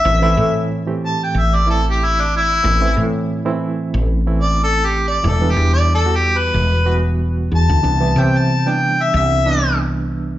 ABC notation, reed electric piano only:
X:1
M:4/4
L:1/16
Q:"Swing 16ths" 1/4=92
K:Ador
V:1 name="Reed electric piano"
[E,A,CE] [E,A,CE]4 [E,A,CG]4- [E,A,CG] [E,A,CE]6 | [E,A,CE] [E,A,CE]4 [E,A,CE]4- [E,A,CE] [E,A,CE]6 | [E,G,B,E] [E,G,B,D]4 [E,G,B,F]4- [E,G,B,F] [E,G,B,F]6 | [E,G,B,D] [E,G,B,E]4 [E,G,B,D]4- [E,G,B,D] [E,G,B,D]6 |]